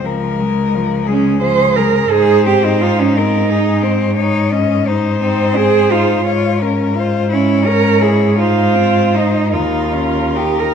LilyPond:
<<
  \new Staff \with { instrumentName = "Cello" } { \time 6/8 \key aes \major \tempo 4. = 57 bes'4. aes'4. | c''4. bes'8 aes'8 c''8 | des''8 ees''8 c''2 | des''8 bes'8 c''8 des''4. |
c''4. bes'4. | }
  \new Staff \with { instrumentName = "Cello" } { \time 6/8 \key aes \major r4. des'8 c''8 bes'8 | aes'8 g'16 ees'16 f'16 des'16 ees'4. | r4. c'8 aes'8 f'8 | r4. des'8 bes'8 aes'8 |
f'4 ees'8 f'4 g'16 bes'16 | }
  \new Staff \with { instrumentName = "Cello" } { \time 6/8 \key aes \major f8 aes8 f8 aes8 f8 aes8 | ees'8 c'8 ees'8 c'8 ees'8 c'8 | ees'8 des'8 ees'8 ees'8 c'8 ees'8 | f'8 des'8 f'8 fes'8 des'8 fes'8 |
ees'8 c'8 ees'8 ees'8 des'8 ees'8 | }
  \new Staff \with { instrumentName = "Cello" } { \clef bass \time 6/8 \key aes \major des,2. | aes,2.~ | aes,2. | aes,2.~ |
aes,4. ees,4. | }
>>